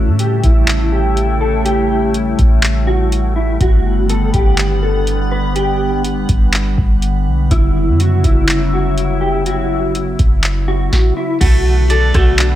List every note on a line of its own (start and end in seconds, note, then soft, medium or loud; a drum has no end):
0.00 3.57 C#3 medium
0.00 3.57 G3 medium
0.00 3.57 A3 medium
0.00 0.16 E4 loud
0.00 3.57 E4 medium
0.07 0.42 A2 loud
0.19 0.43 G4 medium
0.19 closed hi-hat medium
0.44 2.35 A1 loud
0.44 0.90 E4 medium
0.44 kick medium
0.44 closed hi-hat medium
0.68 clap loud
0.68 closed hi-hat medium
0.92 1.38 G4 medium
1.17 closed hi-hat medium
1.41 1.64 A4 medium
1.65 2.11 G4 loud
1.65 closed hi-hat medium
2.14 closed hi-hat medium
2.39 3.57 A1 loud
2.39 kick loud
2.39 closed hi-hat medium
2.63 clap loud
2.63 closed hi-hat medium
2.87 3.33 F#4 medium
3.12 closed hi-hat medium
3.36 3.59 E4 medium
3.61 4.31 G1 loud
3.61 7.47 D3 medium
3.61 7.47 G3 medium
3.61 10.88 B3 medium
3.61 4.07 F#4 loud
3.61 7.47 F#5 medium
3.61 kick loud
3.61 closed hi-hat medium
4.09 4.33 A4 medium
4.09 closed hi-hat medium
4.33 6.25 G1 loud
4.33 4.79 G4 medium
4.33 kick loud
4.33 closed hi-hat medium
4.58 clap loud
4.58 closed hi-hat medium
4.83 5.29 A4 medium
5.07 closed hi-hat medium
5.32 5.55 B4 medium
5.56 6.02 G4 loud
5.56 closed hi-hat medium
6.05 closed hi-hat medium
6.29 6.76 G1 loud
6.29 kick loud
6.29 closed hi-hat medium
6.54 clap loud
6.54 closed hi-hat medium
6.78 7.28 G1 loud
6.78 kick medium
7.02 closed hi-hat medium
7.26 7.50 B1 loud
7.51 7.89 F#1 loud
7.51 10.89 C#3 medium
7.51 10.89 F#3 medium
7.51 10.89 E4 medium
7.51 7.97 E4 loud
7.51 kick loud
7.51 closed hi-hat medium
7.88 8.22 F#2 loud
7.99 8.23 F#4 medium
7.99 closed hi-hat medium
8.24 10.15 F#1 loud
8.24 8.70 E4 loud
8.24 kick loud
8.24 closed hi-hat medium
8.49 clap loud
8.49 closed hi-hat medium
8.73 9.19 F#4 medium
8.98 closed hi-hat medium
9.21 9.44 G4 medium
9.46 9.92 F#4 loud
9.46 closed hi-hat medium
9.95 closed hi-hat medium
10.19 10.90 F#1 loud
10.19 kick loud
10.19 closed hi-hat medium
10.44 clap loud
10.44 closed hi-hat medium
10.68 11.14 F#4 medium
10.92 kick loud
10.92 snare medium
11.17 11.40 E4 medium
11.40 12.11 B1 loud
11.40 12.55 D3 medium
11.40 12.13 A3 medium
11.40 12.55 A3 medium
11.40 12.55 B3 medium
11.40 11.87 F#4 loud
11.40 12.55 F#4 medium
11.40 kick loud
11.40 closed hi-hat medium
11.40 crash loud
11.90 12.13 A4 medium
11.90 12.55 D5 medium
11.90 closed hi-hat medium
12.14 12.55 B1 loud
12.14 12.55 A3 medium
12.14 12.55 F#4 medium
12.14 kick loud
12.14 cross-stick loud
12.14 closed hi-hat medium
12.39 12.55 D4 medium
12.39 clap loud
12.39 closed hi-hat medium